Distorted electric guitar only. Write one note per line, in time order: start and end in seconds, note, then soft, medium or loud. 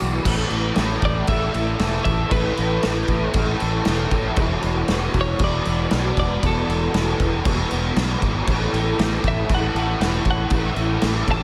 0.00 0.24 E2 medium
0.00 0.24 B2 medium
0.00 0.24 E3 medium
0.24 0.76 A2 loud
0.24 0.77 E3 loud
0.24 0.78 A3 loud
0.76 1.26 A2 medium
0.76 1.28 E3 medium
0.76 1.28 A3 medium
1.27 1.77 A2 medium
1.27 1.54 E3 loud
1.27 1.52 A3 loud
1.53 1.78 E3 medium
1.53 1.79 A3 medium
1.78 2.28 A2 medium
1.78 2.29 E3 medium
1.78 2.31 A3 loud
2.29 2.81 A2 medium
2.29 2.83 E3 loud
2.29 2.83 A3 loud
2.82 3.32 A2 medium
2.82 3.34 E3 medium
2.82 3.35 A3 medium
3.33 3.84 A2 medium
3.33 3.60 E3 loud
3.33 3.59 A3 loud
3.59 3.86 E3 medium
3.59 3.87 A3 medium
3.86 4.36 A2 medium
3.86 4.39 E3 medium
3.86 4.42 A3 medium
4.38 4.89 E2 loud
4.38 4.89 B2 medium
4.38 4.91 E3 loud
4.90 5.40 E2 medium
4.90 5.42 B2 medium
4.90 5.43 E3 medium
5.41 5.91 E2 loud
5.41 5.68 B2 loud
5.41 5.67 E3 loud
5.67 5.92 B2 medium
5.67 5.93 E3 medium
5.92 6.43 E2 medium
5.92 6.43 B2 medium
5.92 6.45 E3 medium
6.44 6.92 E2 medium
6.44 6.93 B2 loud
6.44 6.95 E3 loud
6.93 7.45 E2 medium
6.93 7.46 B2 medium
6.93 7.48 E3 medium
7.46 7.96 E2 loud
7.46 7.73 B2 loud
7.46 7.72 E3 loud
7.72 7.96 B2 medium
7.72 7.98 E3 medium
7.97 8.47 E2 medium
7.97 8.46 B2 medium
7.97 8.47 E3 medium
8.47 8.98 A2 medium
8.47 8.99 E3 loud
8.47 9.00 A3 loud
8.98 9.49 A2 medium
8.98 9.51 E3 medium
8.98 9.52 A3 medium
9.50 9.99 A2 medium
9.50 9.76 E3 loud
9.50 9.74 A3 loud
9.75 10.01 E3 medium
9.75 10.02 A3 medium
10.00 10.50 A2 medium
10.00 10.52 E3 medium
10.00 10.53 A3 medium
10.52 11.01 A2 medium
10.52 11.02 E3 medium
10.52 11.03 A3 loud
11.02 11.43 A2 medium
11.02 11.43 E3 medium
11.02 11.43 A3 medium